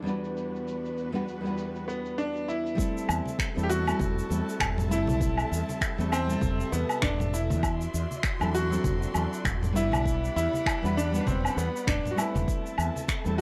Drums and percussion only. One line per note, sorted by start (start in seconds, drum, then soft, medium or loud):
0.07 shaker medium
0.24 shaker soft
0.37 shaker soft
0.56 shaker soft
0.68 shaker medium
0.86 shaker soft
0.98 shaker medium
1.15 shaker soft
1.28 shaker medium
1.45 shaker soft
1.58 shaker medium
1.75 shaker soft
1.89 shaker medium
2.05 shaker soft
2.19 shaker medium
2.36 shaker soft
2.49 shaker medium
2.66 shaker soft
2.78 kick loud
2.78 shaker medium
2.97 shaker soft
3.09 low woodblock medium
3.09 shaker medium
3.26 high conga medium
3.26 shaker soft
3.39 finger snap medium
3.39 kick loud
3.39 shaker medium
3.58 shaker soft
3.71 shaker medium
3.87 low woodblock medium
3.87 shaker soft
4.00 kick loud
4.00 high conga medium
4.00 shaker medium
4.19 shaker soft
4.31 shaker medium
4.49 shaker soft
4.60 finger snap loud
4.60 kick loud
4.60 low conga medium
4.60 low woodblock medium
4.60 shaker medium
4.78 low conga loud
4.78 shaker soft
4.92 shaker medium
5.07 high conga loud
5.07 shaker soft
5.21 kick loud
5.21 shaker medium
5.38 low woodblock medium
5.38 shaker soft
5.53 shaker medium
5.69 high conga medium
5.69 shaker soft
5.81 finger snap loud
5.81 kick loud
5.81 shaker medium
6.00 shaker soft
6.12 low woodblock medium
6.12 shaker medium
6.30 shaker medium
6.41 kick loud
6.41 high conga loud
6.41 shaker medium
6.60 shaker soft
6.73 shaker medium
6.89 low woodblock medium
6.89 shaker soft
7.02 finger snap loud
7.02 kick loud
7.02 low conga medium
7.02 shaker medium
7.20 low conga medium
7.20 shaker soft
7.34 shaker medium
7.50 high conga loud
7.50 shaker soft
7.63 kick loud
7.63 low woodblock medium
7.63 shaker medium
7.81 shaker soft
7.95 shaker medium
8.11 high conga medium
8.11 shaker medium
8.23 finger snap loud
8.23 kick loud
8.23 shaker medium
8.41 low woodblock medium
8.41 shaker soft
8.55 shaker medium
8.73 shaker medium
8.84 kick loud
8.84 high conga loud
8.84 shaker medium
9.02 shaker soft
9.14 low woodblock medium
9.14 shaker medium
9.33 shaker soft
9.45 finger snap loud
9.45 kick loud
9.45 low conga medium
9.45 shaker medium
9.63 low conga loud
9.63 shaker soft
9.76 shaker medium
9.92 high conga loud
9.92 low woodblock medium
9.92 shaker soft
10.06 kick loud
10.06 shaker medium
10.24 shaker soft
10.38 shaker medium
10.53 high conga medium
10.53 shaker soft
10.66 finger snap medium
10.66 kick loud
10.66 low woodblock medium
10.66 shaker medium
10.85 shaker soft
10.99 shaker medium
11.15 shaker medium
11.27 kick loud
11.27 high conga loud
11.27 shaker medium
11.45 low woodblock medium
11.45 shaker soft
11.58 shaker medium
11.76 shaker soft
11.87 finger snap loud
11.87 kick loud
11.87 low conga medium
11.87 shaker medium
12.05 low conga medium
12.05 shaker soft
12.18 low woodblock medium
12.18 shaker loud
12.36 high conga medium
12.36 shaker soft
12.48 kick loud
12.48 shaker medium
12.66 shaker soft
12.78 low woodblock medium
12.78 shaker medium
12.96 high conga medium
12.96 shaker medium
13.08 finger snap medium
13.08 kick loud
13.08 shaker medium
13.26 shaker soft